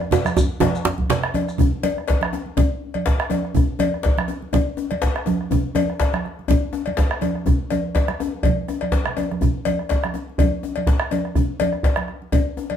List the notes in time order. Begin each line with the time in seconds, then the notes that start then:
0.01 bombo rim, djembe slap
0.11 cowbell, djembe slap, high conga, djembe tone, low conga, shekere
0.25 bombo rim, high conga, shekere
0.36 bombo rim, bombo low, djembe tone, shekere
0.50 djembe slap
0.60 cowbell, djembe slap, djembe tone, high conga, low conga, djembe bass
0.74 djembe slap, shekere
0.85 bombo rim, djembe slap, djembe tone
0.98 bombo low, high conga
1.10 djembe slap, low conga, shekere
1.24 bombo rim
1.34 cowbell, djembe tone, high conga
1.49 bombo rim, shekere
1.58 bombo rim, bombo low, low conga, djembe bass
1.83 cowbell, djembe tone, high conga
1.97 bombo rim, high conga
2.08 bombo low, cowbell, djembe slap
2.21 bombo rim, high conga
2.33 bombo rim, djembe slap, djembe tone, high conga
2.46 high conga
2.57 bombo low, cowbell, high conga, djembe bass, low conga
2.94 cowbell, djembe slap, high conga
3.06 bombo rim, bombo low, djembe slap, high conga
3.20 bombo rim
3.30 cowbell, djembe tone, high conga
3.45 bombo rim
3.55 bombo rim, bombo low, low conga, djembe bass
3.79 cowbell, djembe tone, high conga
3.92 bombo rim, high conga
4.03 bombo low, cowbell, djembe slap
4.18 bombo rim, high conga
4.28 bombo rim, djembe slap, djembe tone, high conga
4.42 high conga
4.53 bombo low, cowbell, high conga, djembe bass, low conga
4.77 djembe tone
4.90 cowbell, djembe slap, high conga
5.02 bombo rim, bombo low, djembe slap, high conga
5.16 bombo rim
5.26 djembe tone, high conga
5.41 bombo rim
5.51 bombo rim, bombo low, djembe bass, low conga
5.75 cowbell, djembe tone, high conga
5.89 bombo rim, high conga
6.00 bombo low, cowbell, djembe slap
6.14 bombo rim, high conga
6.24 bombo rim, djembe slap, high conga
6.39 high conga
6.48 bombo low, cowbell, high conga, djembe bass, low conga
6.73 djembe tone
6.86 cowbell, djembe slap, high conga
6.97 bombo rim, bombo low, djembe slap, high conga
7.11 bombo rim
7.21 cowbell, djembe tone, high conga
7.35 bombo rim
7.46 bombo rim, bombo low, high conga, djembe bass, low conga
7.70 cowbell, djembe tone, high conga
7.95 bombo rim, bombo low, cowbell, djembe slap
8.08 bombo rim, high conga
8.20 bombo rim, djembe tone, high conga
8.35 high conga
8.43 bombo low, cowbell, djembe slap, high conga, djembe bass, low conga
8.68 bombo rim, djembe tone
8.81 bombo rim, cowbell, high conga
8.92 bombo low, djembe slap
9.06 bombo rim, djembe slap, low conga
9.17 bombo rim, cowbell, djembe tone, high conga
9.31 bombo rim, high conga
9.41 bombo rim, bombo low, djembe bass, low conga
9.65 cowbell, djembe tone, high conga
9.79 bombo rim, high conga
9.89 bombo low, cowbell, djembe slap
10.04 bombo rim, high conga
10.14 bombo rim, djembe slap, djembe tone, high conga
10.29 high conga
10.38 bombo low, cowbell, high conga, djembe bass, low conga
10.63 djembe tone
10.76 cowbell, djembe slap, high conga
10.87 bombo rim, bombo low, djembe slap
11.00 bombo rim
11.11 cowbell, djembe tone, high conga
11.25 bombo rim
11.35 bombo rim, bombo low, djembe bass, low conga
11.60 cowbell, djembe tone, high conga
11.72 bombo rim, high conga
11.83 bombo low, cowbell, djembe slap
11.96 bombo rim, high conga
12.08 bombo rim, djembe slap, high conga
12.22 high conga
12.32 bombo low, cowbell, high conga, djembe bass, low conga
12.57 djembe tone
12.70 cowbell, djembe slap, high conga